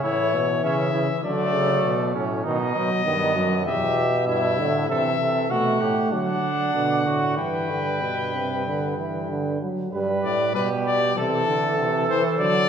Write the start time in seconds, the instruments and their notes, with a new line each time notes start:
0.03 bass trombone A2, euphonium E3, trumpet E4, cornet C#5
0.34 bass trombone B2, trumpet E4
0.63 bass trombone C#3, trumpet C#4, cornet E5
0.93 bass trombone C#3, trumpet E4
1.23 bass trombone D3, euphonium F#3, trumpet A3, cornet D5
1.54 bass trombone C#3
1.84 bass trombone B2
2.14 bass trombone A2, trumpet C#4
2.44 bass trombone B2, euphonium D#3, trumpet D#4, cornet D#5
2.75 bass trombone B2, euphonium F#3
3.05 bass trombone G2, euphonium D#3, trumpet B3
3.35 bass trombone F#2, euphonium F#3
3.65 bass trombone E2, euphonium B2, trumpet G4, cornet E5
4.27 bass trombone G2, trumpet E4, cornet E5
4.58 bass trombone A2, euphonium D3
4.88 bass trombone C3, euphonium E3, trumpet A4, cornet E5
5.19 bass trombone C3, trumpet A4
5.49 bass trombone B2, euphonium A3, trumpet F#4, cornet F#5
5.81 bass trombone A2, trumpet G4
6.11 bass trombone D3, euphonium F#3, trumpet D4, cornet F#5
6.74 bass trombone B2, euphonium D3
7.05 bass trombone A2, trumpet F#4
7.37 bass trombone G2, euphonium E3, trumpet B4, cornet G5
7.70 euphonium D3
8.02 euphonium B2
8.34 euphonium C3
8.66 euphonium D3
8.97 euphonium E3
9.29 euphonium D3
9.61 euphonium F#3
9.92 bass trombone G2, euphonium G3, trumpet B4
10.24 bass trombone A2, cornet D5
10.55 bass trombone B2, euphonium G3, trumpet G4, cornet B4
10.87 cornet D5
11.16 bass trombone C3, euphonium E3, trumpet A4, cornet A4
11.47 bass trombone D3
11.79 bass trombone C3
12.09 bass trombone E3, cornet C5
12.39 bass trombone D3, euphonium F#3, cornet D5